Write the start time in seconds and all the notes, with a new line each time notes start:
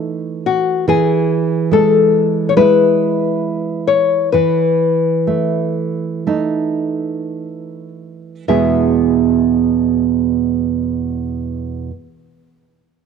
Already playing: E3 A3 D#4 B4
0.46 F#4
0.88 E3 G#4
1.71 G#3 A4
2.49 C#5
2.56 G#3 E4 B4
3.88 C#5
4.33 E3 B4
5.27 A3
6.27 A3 D#4
8.48 E2 B2 G#3 B3 E4 G#4 E5